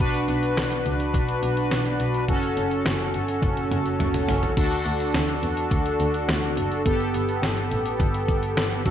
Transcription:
0.00 double bass B1, analog polysynth D4 F#4 B4, kick, closed hi-hat
0.14 closed hi-hat
0.28 double bass B1, closed hi-hat
0.43 closed hi-hat
0.57 double bass B1, snare, closed hi-hat
0.71 closed hi-hat
0.86 double bass C#2, closed hi-hat
1.00 closed hi-hat
1.14 double bass B1, kick, closed hi-hat
1.29 closed hi-hat
1.43 double bass B1, closed hi-hat
1.57 closed hi-hat
1.71 double bass B1, snare, closed hi-hat
1.86 closed hi-hat
2.00 double bass B1, closed hi-hat
2.14 closed hi-hat
2.28 double bass F#1, analog polysynth C#4 F#4 A4, kick, closed hi-hat
2.43 closed hi-hat
2.57 double bass F#1, closed hi-hat
2.71 closed hi-hat
2.85 double bass F#1, snare, closed hi-hat
3.00 closed hi-hat
3.14 double bass G1, closed hi-hat
3.28 closed hi-hat
3.42 double bass F#1, kick, closed hi-hat, high tom
3.57 closed hi-hat
3.71 double bass F#1, closed hi-hat, mid tom
3.86 closed hi-hat
4.00 double bass F#1, closed hi-hat, mid tom
4.14 closed hi-hat, mid tom
4.28 double bass F#1, floor tom, open hi-hat
4.43 closed hi-hat, floor tom
4.57 double bass D2, analog polysynth D4 F#4 A4, kick, closed hi-hat, crash
4.72 closed hi-hat
4.86 double bass D2, closed hi-hat
5.00 closed hi-hat
5.14 double bass D2, snare, closed hi-hat
5.29 closed hi-hat
5.43 double bass E2, closed hi-hat
5.57 closed hi-hat
5.71 double bass D2, kick, closed hi-hat
5.86 closed hi-hat
6.00 double bass D2, closed hi-hat
6.14 closed hi-hat
6.29 double bass D2, snare, closed hi-hat
6.43 closed hi-hat
6.57 double bass F#1, closed hi-hat
6.72 closed hi-hat
6.86 double bass G1, analog polysynth B3 G4 A4, kick, closed hi-hat
7.00 closed hi-hat
7.14 double bass G1, closed hi-hat
7.29 closed hi-hat
7.43 double bass G1, snare, closed hi-hat
7.57 closed hi-hat
7.71 double bass A1, closed hi-hat
7.86 closed hi-hat
8.00 double bass G1, kick, closed hi-hat
8.14 closed hi-hat
8.28 double bass G1, kick, closed hi-hat
8.43 closed hi-hat
8.57 double bass G1, snare, closed hi-hat
8.71 closed hi-hat
8.86 double bass D2, analog polysynth D4 F#4 A4, kick, closed hi-hat

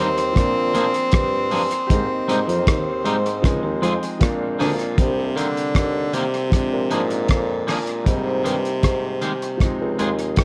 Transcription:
Already playing: clean electric guitar D#3, grand piano D#3 G3 A#3 D5, tenor saxophone C4
0.00 bassoon D#2
0.18 closed hi-hat
0.33 bassoon A#2, grand piano F3 A#3 C4, clean electric guitar A#3, kick, closed hi-hat
0.37 grand piano D4, cross-stick
0.74 bassoon A#2, clean electric guitar F3 A#3 D4 G#4, closed hi-hat
0.94 closed hi-hat
1.12 bassoon G2, clean electric guitar G3, kick, cross-stick, closed hi-hat
1.51 bassoon G2, clean electric guitar F3 G3 A#3 D4 G#4, open hi-hat
1.71 closed hi-hat
1.87 bassoon G#2, clean electric guitar G#3, grand piano A#3 G4, kick, closed hi-hat
1.91 grand piano C4 D#4
2.28 bassoon G#2, clean electric guitar G3 G#3 C4 D#4 G4, closed hi-hat
2.47 bassoon F2, clean electric guitar F3, closed hi-hat
2.66 bassoon D#2, clean electric guitar D#3, kick, cross-stick, closed hi-hat
3.04 bassoon G#2, clean electric guitar G3 G#3 C4 D#4 G4, grand piano C6, closed hi-hat
3.26 closed hi-hat
3.42 bassoon C#2, clean electric guitar C#3, grand piano F3 G#3 C4 D#4 G#5, kick, cross-stick, closed hi-hat
3.63 bassoon D#2, clean electric guitar D#3
3.82 bassoon F2, clean electric guitar F3 G#3 C4 F4 G#4, grand piano G5, closed hi-hat
4.03 closed hi-hat
4.19 bassoon A#2, grand piano F3 G#3 C4 D4 F5, clean electric guitar A#3, kick, cross-stick, closed hi-hat
4.59 bassoon D2, tenor saxophone A#2, clean electric guitar D3 F3 A#3 D4 G#4, grand piano F5, cross-stick, open hi-hat
4.79 closed hi-hat
4.96 bassoon C2, grand piano C3 G3 A#3, tenor saxophone C3, kick, closed hi-hat
5.01 grand piano D4
5.36 tenor saxophone D3, clean electric guitar D#3 A#3 C4 G4, closed hi-hat
5.57 closed hi-hat
5.75 bassoon D#2, kick, cross-stick, closed hi-hat
6.13 tenor saxophone C3, clean electric guitar D#3 A#3 C4 G4, closed hi-hat
6.34 closed hi-hat
6.50 grand piano F3 G#3, kick, cross-stick, closed hi-hat
6.54 grand piano C4 D4
6.72 bassoon A#2
6.90 bassoon G#2, tenor saxophone A#2, clean electric guitar F3 A#3 D4 G#4, closed hi-hat
7.11 closed hi-hat
7.28 bassoon F2, kick, cross-stick, closed hi-hat
7.67 tenor saxophone A#2, clean electric guitar F3 A#3 D4 G#4, cross-stick, open hi-hat
7.87 closed hi-hat
8.04 bassoon G#2, grand piano G3 A#3 C4, kick, closed hi-hat
8.09 tenor saxophone C3, grand piano D#4
8.44 bassoon G2, clean electric guitar D#3 G#3 C4 G4, closed hi-hat
8.65 closed hi-hat
8.83 bassoon G#2, kick, cross-stick, closed hi-hat
9.21 clean electric guitar D#3 G#3 C4 G4, closed hi-hat
9.42 closed hi-hat
9.57 grand piano F3 G#3, kick, cross-stick, closed hi-hat
9.62 grand piano C4 D#4
9.81 bassoon C#2
9.99 bassoon D#2, clean electric guitar G#3 C4 F4 G#4, closed hi-hat
10.19 closed hi-hat
10.36 bassoon C#2, grand piano G5, kick, cross-stick, closed hi-hat

